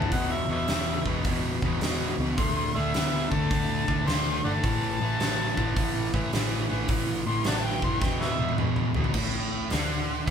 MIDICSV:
0, 0, Header, 1, 5, 480
1, 0, Start_track
1, 0, Tempo, 564972
1, 96, Time_signature, 4, 2, 24, 8
1, 8755, End_track
2, 0, Start_track
2, 0, Title_t, "Harmonica"
2, 0, Program_c, 0, 22
2, 0, Note_on_c, 0, 81, 98
2, 96, Note_off_c, 0, 81, 0
2, 105, Note_on_c, 0, 78, 98
2, 272, Note_on_c, 0, 76, 86
2, 284, Note_off_c, 0, 78, 0
2, 420, Note_off_c, 0, 76, 0
2, 436, Note_on_c, 0, 71, 61
2, 436, Note_on_c, 0, 73, 61
2, 436, Note_on_c, 0, 76, 87
2, 490, Note_off_c, 0, 71, 0
2, 490, Note_off_c, 0, 73, 0
2, 893, Note_off_c, 0, 76, 0
2, 2019, Note_on_c, 0, 84, 102
2, 2174, Note_off_c, 0, 84, 0
2, 2182, Note_on_c, 0, 84, 90
2, 2345, Note_on_c, 0, 76, 86
2, 2358, Note_off_c, 0, 84, 0
2, 2802, Note_off_c, 0, 76, 0
2, 2808, Note_on_c, 0, 81, 99
2, 3433, Note_off_c, 0, 81, 0
2, 3458, Note_on_c, 0, 84, 95
2, 3768, Note_off_c, 0, 84, 0
2, 3777, Note_on_c, 0, 74, 82
2, 3777, Note_on_c, 0, 78, 82
2, 3777, Note_on_c, 0, 81, 117
2, 3834, Note_off_c, 0, 78, 0
2, 3849, Note_off_c, 0, 74, 0
2, 5182, Note_off_c, 0, 81, 0
2, 6177, Note_on_c, 0, 84, 99
2, 6331, Note_off_c, 0, 84, 0
2, 6349, Note_on_c, 0, 74, 76
2, 6349, Note_on_c, 0, 78, 76
2, 6349, Note_on_c, 0, 81, 108
2, 6416, Note_off_c, 0, 74, 0
2, 6422, Note_off_c, 0, 78, 0
2, 6493, Note_on_c, 0, 79, 111
2, 6506, Note_off_c, 0, 81, 0
2, 6649, Note_off_c, 0, 79, 0
2, 6659, Note_on_c, 0, 84, 111
2, 6824, Note_on_c, 0, 79, 95
2, 6836, Note_off_c, 0, 84, 0
2, 6966, Note_off_c, 0, 79, 0
2, 6972, Note_on_c, 0, 71, 76
2, 6972, Note_on_c, 0, 73, 76
2, 6972, Note_on_c, 0, 76, 108
2, 7023, Note_off_c, 0, 73, 0
2, 7039, Note_off_c, 0, 71, 0
2, 7230, Note_off_c, 0, 76, 0
2, 8755, End_track
3, 0, Start_track
3, 0, Title_t, "Overdriven electric guitar"
3, 0, Program_c, 1, 29
3, 105, Note_on_c, 1, 40, 79
3, 105, Note_on_c, 1, 47, 74
3, 386, Note_off_c, 1, 40, 0
3, 386, Note_off_c, 1, 47, 0
3, 418, Note_on_c, 1, 40, 74
3, 423, Note_on_c, 1, 47, 81
3, 563, Note_off_c, 1, 40, 0
3, 565, Note_off_c, 1, 47, 0
3, 584, Note_on_c, 1, 49, 100
3, 585, Note_on_c, 1, 40, 82
3, 866, Note_off_c, 1, 40, 0
3, 866, Note_off_c, 1, 49, 0
3, 904, Note_on_c, 1, 40, 77
3, 906, Note_on_c, 1, 47, 84
3, 1046, Note_off_c, 1, 40, 0
3, 1047, Note_off_c, 1, 47, 0
3, 1069, Note_on_c, 1, 40, 69
3, 1077, Note_on_c, 1, 47, 84
3, 1349, Note_off_c, 1, 40, 0
3, 1352, Note_off_c, 1, 47, 0
3, 1389, Note_on_c, 1, 40, 69
3, 1394, Note_on_c, 1, 47, 73
3, 1529, Note_off_c, 1, 40, 0
3, 1531, Note_off_c, 1, 47, 0
3, 1547, Note_on_c, 1, 40, 72
3, 1552, Note_on_c, 1, 47, 98
3, 1828, Note_off_c, 1, 40, 0
3, 1830, Note_off_c, 1, 47, 0
3, 1865, Note_on_c, 1, 40, 66
3, 1868, Note_on_c, 1, 47, 80
3, 2007, Note_off_c, 1, 40, 0
3, 2009, Note_off_c, 1, 47, 0
3, 2018, Note_on_c, 1, 50, 74
3, 2027, Note_on_c, 1, 57, 79
3, 2303, Note_off_c, 1, 50, 0
3, 2308, Note_off_c, 1, 57, 0
3, 2339, Note_on_c, 1, 50, 76
3, 2346, Note_on_c, 1, 57, 89
3, 2484, Note_off_c, 1, 50, 0
3, 2488, Note_off_c, 1, 57, 0
3, 2502, Note_on_c, 1, 50, 85
3, 2508, Note_on_c, 1, 59, 90
3, 2786, Note_off_c, 1, 50, 0
3, 2788, Note_off_c, 1, 59, 0
3, 2822, Note_on_c, 1, 50, 72
3, 2826, Note_on_c, 1, 57, 79
3, 2965, Note_off_c, 1, 50, 0
3, 2968, Note_off_c, 1, 57, 0
3, 2983, Note_on_c, 1, 50, 78
3, 2989, Note_on_c, 1, 57, 98
3, 3266, Note_off_c, 1, 50, 0
3, 3269, Note_off_c, 1, 57, 0
3, 3296, Note_on_c, 1, 50, 71
3, 3300, Note_on_c, 1, 57, 75
3, 3436, Note_off_c, 1, 50, 0
3, 3438, Note_off_c, 1, 57, 0
3, 3446, Note_on_c, 1, 50, 88
3, 3448, Note_on_c, 1, 57, 92
3, 3737, Note_off_c, 1, 50, 0
3, 3738, Note_off_c, 1, 57, 0
3, 3775, Note_on_c, 1, 50, 75
3, 3778, Note_on_c, 1, 57, 78
3, 3922, Note_off_c, 1, 50, 0
3, 3923, Note_off_c, 1, 57, 0
3, 3939, Note_on_c, 1, 45, 83
3, 3947, Note_on_c, 1, 52, 92
3, 4223, Note_off_c, 1, 45, 0
3, 4227, Note_off_c, 1, 52, 0
3, 4256, Note_on_c, 1, 45, 75
3, 4260, Note_on_c, 1, 52, 80
3, 4402, Note_off_c, 1, 45, 0
3, 4404, Note_off_c, 1, 52, 0
3, 4415, Note_on_c, 1, 54, 88
3, 4419, Note_on_c, 1, 45, 90
3, 4701, Note_off_c, 1, 54, 0
3, 4703, Note_off_c, 1, 45, 0
3, 4725, Note_on_c, 1, 45, 74
3, 4733, Note_on_c, 1, 52, 83
3, 4877, Note_off_c, 1, 45, 0
3, 4880, Note_off_c, 1, 52, 0
3, 4898, Note_on_c, 1, 45, 77
3, 4905, Note_on_c, 1, 52, 86
3, 5182, Note_off_c, 1, 45, 0
3, 5186, Note_off_c, 1, 52, 0
3, 5214, Note_on_c, 1, 45, 79
3, 5217, Note_on_c, 1, 52, 92
3, 5360, Note_off_c, 1, 45, 0
3, 5362, Note_off_c, 1, 52, 0
3, 5374, Note_on_c, 1, 45, 84
3, 5382, Note_on_c, 1, 52, 101
3, 5660, Note_off_c, 1, 45, 0
3, 5664, Note_off_c, 1, 52, 0
3, 5685, Note_on_c, 1, 45, 71
3, 5689, Note_on_c, 1, 52, 89
3, 5836, Note_off_c, 1, 45, 0
3, 5838, Note_off_c, 1, 52, 0
3, 5849, Note_on_c, 1, 45, 79
3, 5851, Note_on_c, 1, 52, 90
3, 6137, Note_off_c, 1, 45, 0
3, 6138, Note_off_c, 1, 52, 0
3, 6172, Note_on_c, 1, 45, 83
3, 6177, Note_on_c, 1, 52, 102
3, 6319, Note_off_c, 1, 45, 0
3, 6321, Note_off_c, 1, 52, 0
3, 6331, Note_on_c, 1, 45, 83
3, 6342, Note_on_c, 1, 54, 96
3, 6617, Note_off_c, 1, 45, 0
3, 6623, Note_off_c, 1, 54, 0
3, 6647, Note_on_c, 1, 45, 85
3, 6647, Note_on_c, 1, 52, 90
3, 6796, Note_off_c, 1, 45, 0
3, 6796, Note_off_c, 1, 52, 0
3, 6806, Note_on_c, 1, 40, 81
3, 6812, Note_on_c, 1, 47, 92
3, 7095, Note_off_c, 1, 40, 0
3, 7098, Note_off_c, 1, 47, 0
3, 7122, Note_on_c, 1, 40, 82
3, 7129, Note_on_c, 1, 47, 91
3, 7273, Note_off_c, 1, 40, 0
3, 7277, Note_off_c, 1, 47, 0
3, 7288, Note_on_c, 1, 40, 82
3, 7294, Note_on_c, 1, 47, 98
3, 7576, Note_off_c, 1, 40, 0
3, 7578, Note_off_c, 1, 47, 0
3, 7606, Note_on_c, 1, 40, 76
3, 7609, Note_on_c, 1, 47, 88
3, 7755, Note_off_c, 1, 40, 0
3, 7756, Note_off_c, 1, 47, 0
3, 7769, Note_on_c, 1, 45, 98
3, 8249, Note_off_c, 1, 45, 0
3, 8249, Note_on_c, 1, 50, 98
3, 8717, Note_off_c, 1, 50, 0
3, 8720, Note_on_c, 1, 52, 92
3, 8755, Note_off_c, 1, 52, 0
3, 8755, End_track
4, 0, Start_track
4, 0, Title_t, "Picked electric bass"
4, 0, Program_c, 2, 34
4, 99, Note_on_c, 2, 28, 90
4, 379, Note_off_c, 2, 28, 0
4, 402, Note_on_c, 2, 28, 88
4, 552, Note_off_c, 2, 28, 0
4, 566, Note_on_c, 2, 28, 101
4, 852, Note_off_c, 2, 28, 0
4, 900, Note_on_c, 2, 28, 85
4, 1042, Note_off_c, 2, 28, 0
4, 1064, Note_on_c, 2, 28, 92
4, 1342, Note_off_c, 2, 28, 0
4, 1381, Note_on_c, 2, 28, 91
4, 1523, Note_off_c, 2, 28, 0
4, 1531, Note_on_c, 2, 28, 95
4, 1816, Note_off_c, 2, 28, 0
4, 1846, Note_on_c, 2, 37, 85
4, 1995, Note_off_c, 2, 37, 0
4, 2017, Note_on_c, 2, 38, 100
4, 2299, Note_off_c, 2, 38, 0
4, 2349, Note_on_c, 2, 38, 86
4, 2488, Note_off_c, 2, 38, 0
4, 2502, Note_on_c, 2, 38, 96
4, 2781, Note_off_c, 2, 38, 0
4, 2819, Note_on_c, 2, 38, 83
4, 2962, Note_off_c, 2, 38, 0
4, 2981, Note_on_c, 2, 38, 92
4, 3261, Note_off_c, 2, 38, 0
4, 3296, Note_on_c, 2, 38, 93
4, 3440, Note_off_c, 2, 38, 0
4, 3464, Note_on_c, 2, 38, 105
4, 3742, Note_off_c, 2, 38, 0
4, 3786, Note_on_c, 2, 31, 87
4, 3926, Note_off_c, 2, 31, 0
4, 3943, Note_on_c, 2, 33, 97
4, 4222, Note_off_c, 2, 33, 0
4, 4255, Note_on_c, 2, 33, 88
4, 4399, Note_off_c, 2, 33, 0
4, 4413, Note_on_c, 2, 33, 94
4, 4696, Note_off_c, 2, 33, 0
4, 4733, Note_on_c, 2, 33, 85
4, 4878, Note_off_c, 2, 33, 0
4, 4898, Note_on_c, 2, 33, 98
4, 5179, Note_off_c, 2, 33, 0
4, 5215, Note_on_c, 2, 33, 89
4, 5359, Note_off_c, 2, 33, 0
4, 5377, Note_on_c, 2, 33, 112
4, 5657, Note_off_c, 2, 33, 0
4, 5705, Note_on_c, 2, 33, 89
4, 5844, Note_off_c, 2, 33, 0
4, 5855, Note_on_c, 2, 33, 90
4, 6136, Note_off_c, 2, 33, 0
4, 6167, Note_on_c, 2, 33, 95
4, 6314, Note_off_c, 2, 33, 0
4, 6337, Note_on_c, 2, 33, 99
4, 6617, Note_off_c, 2, 33, 0
4, 6652, Note_on_c, 2, 30, 83
4, 6796, Note_off_c, 2, 30, 0
4, 6806, Note_on_c, 2, 28, 100
4, 7091, Note_off_c, 2, 28, 0
4, 7130, Note_on_c, 2, 28, 87
4, 7275, Note_off_c, 2, 28, 0
4, 7299, Note_on_c, 2, 28, 101
4, 7578, Note_off_c, 2, 28, 0
4, 7612, Note_on_c, 2, 38, 85
4, 7756, Note_off_c, 2, 38, 0
4, 7764, Note_on_c, 2, 33, 86
4, 8214, Note_off_c, 2, 33, 0
4, 8261, Note_on_c, 2, 38, 101
4, 8703, Note_off_c, 2, 38, 0
4, 8755, End_track
5, 0, Start_track
5, 0, Title_t, "Drums"
5, 17, Note_on_c, 9, 43, 85
5, 99, Note_on_c, 9, 46, 53
5, 100, Note_on_c, 9, 36, 102
5, 102, Note_off_c, 9, 43, 0
5, 184, Note_off_c, 9, 46, 0
5, 185, Note_off_c, 9, 36, 0
5, 576, Note_on_c, 9, 46, 55
5, 583, Note_on_c, 9, 38, 98
5, 661, Note_off_c, 9, 46, 0
5, 668, Note_off_c, 9, 38, 0
5, 897, Note_on_c, 9, 36, 74
5, 982, Note_off_c, 9, 36, 0
5, 1057, Note_on_c, 9, 46, 62
5, 1061, Note_on_c, 9, 36, 102
5, 1142, Note_off_c, 9, 46, 0
5, 1146, Note_off_c, 9, 36, 0
5, 1379, Note_on_c, 9, 36, 81
5, 1464, Note_off_c, 9, 36, 0
5, 1540, Note_on_c, 9, 46, 58
5, 1546, Note_on_c, 9, 38, 97
5, 1625, Note_off_c, 9, 46, 0
5, 1631, Note_off_c, 9, 38, 0
5, 2019, Note_on_c, 9, 46, 57
5, 2021, Note_on_c, 9, 36, 113
5, 2104, Note_off_c, 9, 46, 0
5, 2106, Note_off_c, 9, 36, 0
5, 2500, Note_on_c, 9, 46, 53
5, 2506, Note_on_c, 9, 38, 97
5, 2585, Note_off_c, 9, 46, 0
5, 2591, Note_off_c, 9, 38, 0
5, 2817, Note_on_c, 9, 36, 88
5, 2902, Note_off_c, 9, 36, 0
5, 2980, Note_on_c, 9, 46, 55
5, 2981, Note_on_c, 9, 36, 109
5, 3065, Note_off_c, 9, 46, 0
5, 3066, Note_off_c, 9, 36, 0
5, 3298, Note_on_c, 9, 36, 90
5, 3383, Note_off_c, 9, 36, 0
5, 3462, Note_on_c, 9, 46, 55
5, 3469, Note_on_c, 9, 38, 99
5, 3547, Note_off_c, 9, 46, 0
5, 3554, Note_off_c, 9, 38, 0
5, 3938, Note_on_c, 9, 46, 53
5, 3940, Note_on_c, 9, 36, 109
5, 4023, Note_off_c, 9, 46, 0
5, 4024, Note_off_c, 9, 36, 0
5, 4419, Note_on_c, 9, 46, 53
5, 4426, Note_on_c, 9, 38, 104
5, 4504, Note_off_c, 9, 46, 0
5, 4511, Note_off_c, 9, 38, 0
5, 4736, Note_on_c, 9, 36, 90
5, 4821, Note_off_c, 9, 36, 0
5, 4898, Note_on_c, 9, 36, 105
5, 4900, Note_on_c, 9, 46, 62
5, 4983, Note_off_c, 9, 36, 0
5, 4985, Note_off_c, 9, 46, 0
5, 5214, Note_on_c, 9, 36, 80
5, 5299, Note_off_c, 9, 36, 0
5, 5376, Note_on_c, 9, 46, 58
5, 5383, Note_on_c, 9, 38, 106
5, 5461, Note_off_c, 9, 46, 0
5, 5468, Note_off_c, 9, 38, 0
5, 5849, Note_on_c, 9, 46, 67
5, 5852, Note_on_c, 9, 36, 106
5, 5934, Note_off_c, 9, 46, 0
5, 5937, Note_off_c, 9, 36, 0
5, 6324, Note_on_c, 9, 46, 55
5, 6331, Note_on_c, 9, 38, 107
5, 6409, Note_off_c, 9, 46, 0
5, 6416, Note_off_c, 9, 38, 0
5, 6646, Note_on_c, 9, 36, 92
5, 6731, Note_off_c, 9, 36, 0
5, 6810, Note_on_c, 9, 36, 117
5, 6822, Note_on_c, 9, 38, 67
5, 6895, Note_off_c, 9, 36, 0
5, 6907, Note_off_c, 9, 38, 0
5, 6979, Note_on_c, 9, 38, 54
5, 7064, Note_off_c, 9, 38, 0
5, 7129, Note_on_c, 9, 48, 70
5, 7210, Note_off_c, 9, 48, 0
5, 7210, Note_on_c, 9, 48, 66
5, 7290, Note_on_c, 9, 47, 85
5, 7295, Note_off_c, 9, 48, 0
5, 7375, Note_off_c, 9, 47, 0
5, 7445, Note_on_c, 9, 45, 74
5, 7530, Note_off_c, 9, 45, 0
5, 7599, Note_on_c, 9, 43, 93
5, 7681, Note_off_c, 9, 43, 0
5, 7681, Note_on_c, 9, 43, 83
5, 7763, Note_on_c, 9, 49, 102
5, 7766, Note_off_c, 9, 43, 0
5, 7767, Note_on_c, 9, 36, 91
5, 7848, Note_off_c, 9, 49, 0
5, 7851, Note_off_c, 9, 36, 0
5, 8244, Note_on_c, 9, 46, 51
5, 8251, Note_on_c, 9, 38, 89
5, 8329, Note_off_c, 9, 46, 0
5, 8336, Note_off_c, 9, 38, 0
5, 8755, End_track
0, 0, End_of_file